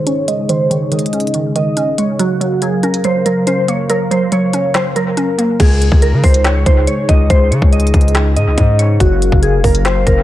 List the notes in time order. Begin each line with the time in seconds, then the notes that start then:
Already playing: C#3 D#3 G#3 D#4 G#4
0.06 C#4 C#5, closed hi-hat
0.28 G#3 D#5, closed hi-hat
0.49 D#3 C5, closed hi-hat
0.70 D#3 C#5, closed hi-hat
0.92 D#3 D#5, closed hi-hat
0.99 closed hi-hat
1.06 closed hi-hat
1.13 C#4, closed hi-hat
1.20 closed hi-hat
1.27 closed hi-hat
1.34 D#3, closed hi-hat
1.56 D#3 D#5, closed hi-hat
1.77 C#4, closed hi-hat
1.98 G#3 C#5, closed hi-hat
2.19 F#3 F#4 A#4 F5, closed hi-hat
2.41 F#3, closed hi-hat
2.62 F#3 G#4, closed hi-hat
2.83 C#4 A#4, closed hi-hat
2.94 closed hi-hat
3.04 F#3 C5, closed hi-hat
3.26 F#3 A#4, closed hi-hat
3.47 C#4 C5, closed hi-hat
3.68 A#3 C#5, closed hi-hat
3.90 F#3 A#4, closed hi-hat
4.11 F#3 C5, closed hi-hat
4.32 F#3 C#5, closed hi-hat
4.53 C#4, closed hi-hat
4.74 F#3 C5, snare, clap, closed hi-hat
4.96 F#3 A#4, closed hi-hat
5.17 C#4, closed hi-hat
5.38 A#3, closed hi-hat
5.60 C#2 C#3 G#3 D#4 G#4, kick, closed hi-hat, crash
5.82 closed hi-hat
5.92 C#2, kick
6.02 A#4, closed hi-hat
6.13 C#3
6.24 C#2 C5, kick, closed hi-hat, open hi-hat
6.34 closed hi-hat
6.44 C#5, snare, clap, closed hi-hat
6.66 C#2 C5, kick, closed hi-hat
6.87 C#5, closed hi-hat
7.09 C#2 D#5, kick, closed hi-hat
7.30 C#2 C5, kick, closed hi-hat
7.51 C#3 C#5, closed hi-hat
7.62 C#2, kick
7.73 D#5, closed hi-hat
7.80 closed hi-hat
7.87 closed hi-hat
7.94 C#2, kick, closed hi-hat
8.01 closed hi-hat
8.08 closed hi-hat
8.15 snare, clap, closed hi-hat
8.36 G#2 D#5, closed hi-hat
8.47 C#2
8.58 G#2, kick, closed hi-hat
8.79 C#5, closed hi-hat
9.00 F#1 F#3 F#4 A#4 F5, kick, closed hi-hat
9.22 closed hi-hat
9.32 F#1, kick
9.43 G#4, closed hi-hat
9.53 F1
9.64 F#1 A#4, kick, closed hi-hat, open hi-hat
9.75 closed hi-hat
9.85 C5, snare, clap, closed hi-hat
10.07 F#1 A#4, kick, closed hi-hat